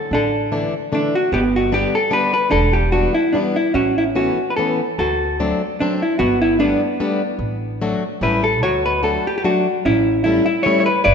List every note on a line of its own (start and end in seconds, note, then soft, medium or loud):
0.00 0.13 A4 medium
0.11 0.64 A1 medium
0.11 0.70 D4 medium
0.11 0.51 A4 loud
0.52 0.74 D3 medium
0.52 0.74 E3 medium
0.52 0.73 A3 medium
0.52 0.74 D4 medium
0.92 1.14 D3 medium
0.92 1.14 E3 medium
0.92 1.14 A3 medium
0.92 1.14 D4 medium
0.92 1.16 D4 medium
1.15 1.33 F#4 medium
1.32 1.84 G1 medium
1.32 1.89 B3 medium
1.32 1.39 G4 loud
1.56 1.74 F#4 medium
1.72 1.93 D3 medium
1.72 1.93 G3 medium
1.72 1.93 B3 medium
1.72 1.93 D4 medium
1.72 1.95 G4 loud
1.95 2.13 A4 loud
2.10 2.33 D3 medium
2.10 2.33 G3 medium
2.10 2.33 B3 medium
2.10 2.33 D4 medium
2.10 2.32 B4 loud
2.34 2.51 B4 loud
2.51 3.05 E1 loud
2.51 3.10 D4 medium
2.51 2.74 A4 loud
2.73 2.92 G4 medium
2.92 3.14 E3 medium
2.92 3.14 G3 medium
2.92 3.14 B3 medium
2.92 3.14 D4 medium
2.92 3.14 F#4 medium
3.15 3.34 E4 medium
3.33 3.56 E3 medium
3.33 3.56 G3 medium
3.33 3.56 B3 medium
3.33 3.39 D4 medium
3.33 3.56 D4 medium
3.56 3.75 E4 medium
3.74 4.28 A1 medium
3.74 4.34 C#4 medium
3.74 3.97 F#4 medium
3.98 4.03 E4 medium
4.15 4.38 E3 medium
4.15 4.38 A3 medium
4.15 4.38 B3 medium
4.15 4.38 C#4 medium
4.15 4.52 F#4 medium
4.50 4.56 B4 medium
4.57 4.80 E3 medium
4.57 4.80 A3 medium
4.57 4.80 B3 medium
4.57 4.80 C#4 medium
4.57 4.98 A4 medium
4.98 5.51 D2 medium
4.98 5.58 F#4 medium
4.98 5.37 A4 loud
5.40 5.62 F#3 medium
5.40 5.62 A3 medium
5.40 5.61 C4 medium
5.40 5.61 D4 medium
5.80 6.02 F#3 medium
5.80 6.02 A3 medium
5.80 6.02 C4 medium
5.80 6.02 D4 medium
6.02 6.19 E4 medium
6.19 6.71 G1 medium
6.19 6.59 B3 medium
6.19 6.41 F#4 loud
6.42 6.60 E4 medium
6.59 6.81 G3 medium
6.59 6.81 A3 medium
6.59 6.81 B3 medium
6.59 8.17 B3 soft
6.59 6.81 D4 medium
6.59 8.26 D4 loud
7.00 7.21 G3 medium
7.00 7.21 A3 medium
7.00 7.21 B3 medium
7.00 7.21 D4 medium
7.39 7.92 A1 medium
7.82 8.03 F#3 medium
7.82 8.03 A3 medium
7.82 8.03 D4 medium
7.82 8.03 F#4 medium
8.21 8.63 A1 medium
8.21 8.44 G3 medium
8.21 8.44 A3 medium
8.21 8.44 C#4 medium
8.21 8.44 E4 medium
8.21 8.61 G4 medium
8.21 8.43 B4 medium
8.44 8.62 A4 medium
8.63 9.16 D2 medium
8.63 9.23 F#4 medium
8.63 8.84 C#5 loud
8.86 9.03 B4 medium
9.03 9.25 F#3 medium
9.03 9.26 A3 medium
9.03 9.26 D4 medium
9.03 9.25 F#4 medium
9.03 9.27 A4 medium
9.27 9.37 G4 medium
9.38 9.44 G4 medium
9.44 9.66 F#3 medium
9.44 9.66 A3 medium
9.44 9.66 D4 medium
9.44 9.66 F#4 medium
9.44 9.85 F#4 medium
9.85 10.38 A1 medium
9.85 10.43 C#4 medium
9.85 10.23 E4 loud
10.24 10.47 G3 medium
10.24 10.47 A3 medium
10.24 10.47 C#4 medium
10.24 10.45 E4 loud
10.24 10.48 E4 medium
10.46 10.65 E4 loud
10.63 10.88 G3 medium
10.63 10.87 A3 medium
10.63 10.87 C#4 medium
10.63 10.87 E4 medium
10.63 10.79 C#5 loud
10.80 10.86 C#5 medium
10.86 11.03 B4 medium
11.04 11.14 G1 medium
11.04 11.14 B4 medium
11.04 11.14 D5 loud